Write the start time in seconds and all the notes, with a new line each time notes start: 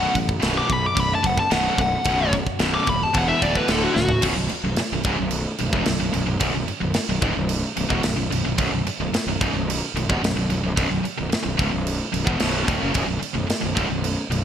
Already playing: B1 F#2 B2 F#5
0.13 A1 B1 F#2, kick, crash
0.29 kick
0.40 B0 B1 F#2 B2, snare, crash
0.58 D6
0.68 B1 F#2, kick, crash
0.73 B5
0.86 D6
0.95 B0 B1 F#2, kick, crash
1.00 B5
1.15 A5
1.22 F#1 B1 F#2, kick, crash
1.26 F#5
1.38 A5, kick
1.50 B0 B1 F#2 B2 F#5, snare, crash
1.78 B0 B1 F#2 F#5, kick, crash
2.04 B0 B1 F#2 B2, kick, crash
2.33 B1 F#2, kick, crash
2.47 kick
2.59 B0 B1 F#2 B2, snare, crash
2.74 D6
2.86 D#1 B1 F#2 B5, kick, crash
3.03 A5
3.13 E1 E2 B2 E3, kick, crash
3.18 F#5
3.29 E5
3.41 D1 E2 B2 E3 D5, kick, crash
3.55 B4, kick
3.68 D1 D2 A2 D3 A4, snare, crash
3.84 F#4
3.95 C#1 D2 A2 F#4, snare
4.09 floor tom
4.21 B0 B1 F#2, kick, crash
4.36 B0 B1 F#2
4.49 muted distorted electric guitar stroke, muted fingered electric bass stroke, crash
4.64 B0 B1 F#2
4.76 muted fingered electric bass stroke, muted distorted electric guitar stroke, snare, crash
4.92 B0 B1 F#2
5.03 C#1 C#2 G#2, kick, crash
5.17 B0 B1 F#2
5.31 crash
5.58 B0 B1 F#2, crash
5.73 E1 E2 B2, kick
5.86 B0 B1 F#2, snare, crash
5.99 B0 B1 F#2
6.13 B0 B1 F#2, crash
6.26 B0 B1 F#2
6.40 B0 B1 F#2, kick, crash
6.54 B0 B1 F#2
6.68 muted distorted electric guitar stroke, muted fingered electric bass stroke, crash
6.81 B0 B1 F#2
6.94 muted distorted electric guitar stroke, muted fingered electric bass stroke, snare, crash
7.09 B0 B1 F#2
7.21 C#1 C#2 G#2, kick, crash
7.35 B0 B1 F#2
7.49 crash
7.76 B0 B1 F#2, crash
7.88 E1 E2 B2, kick
8.03 B0 B1 F#2, snare, crash
8.16 B0 B1 F#2
8.30 B0 B1 F#2, crash
8.45 B0 B1 F#2
8.58 B0 B1 F#2, kick, crash
8.71 B0 B1 F#2
8.86 muted distorted electric guitar stroke, muted fingered electric bass stroke, crash
9.00 B0 B1 F#2
9.13 muted fingered electric bass stroke, muted distorted electric guitar stroke, snare, crash
9.27 B0 B1 F#2
9.40 C#1 C#2 G#2, kick, crash
9.54 B0 B1 F#2
9.70 crash
9.94 B0 B1 F#2, crash
10.09 E1 E2 B2, kick
10.22 B0 B1 F#2, snare, crash
10.36 B0 B1 F#2
10.49 B0 B1 F#2, crash
10.63 B0 B1 F#2
10.76 B0 B1 F#2, kick, crash
10.90 B0 B1 F#2
11.03 muted distorted electric guitar stroke, muted fingered electric bass stroke, crash
11.18 B0 B1 F#2
11.30 muted distorted electric guitar stroke, muted fingered electric bass stroke, snare, crash
11.43 B0 B1 F#2
11.57 C#1 C#2 G#2, kick, crash
11.71 B0 B1 F#2
11.87 crash
12.13 B0 B1 F#2, crash
12.25 E1 E2 B2, kick
12.39 B0 B1 F#2 B2, snare, crash
12.66 D1 D2 A2, kick, crash
12.80 F#1 F#2 C#3
12.93 B0 B1 F#2, kick, crash
13.07 B0 B1 F#2
13.20 muted distorted electric guitar stroke, muted fingered electric bass stroke, crash
13.34 B0 B1 F#2
13.48 muted distorted electric guitar stroke, muted fingered electric bass stroke, snare, crash
13.62 B0 B1 F#2
13.75 C#1 C#2 G#2, kick, crash
13.89 B0 B1 F#2
14.04 crash
14.30 B0 B1 F#2, crash